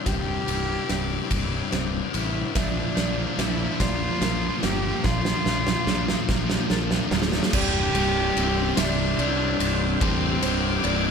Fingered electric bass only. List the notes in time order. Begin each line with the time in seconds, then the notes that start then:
0.06 C1
0.48 C1
0.89 C1
1.31 C1
1.73 C1
2.14 A1
2.55 A#1
2.97 A#1
3.38 A#1
3.80 A#1
4.21 A#1
4.63 G1
5.04 A#1
5.46 A#1
5.87 A#1
6.29 A#1
6.70 A#1
7.11 D1
7.53 C1
7.94 C1
8.36 C1
8.77 C1
9.18 C2
9.60 C1
10.01 A1
10.43 C1
10.85 C1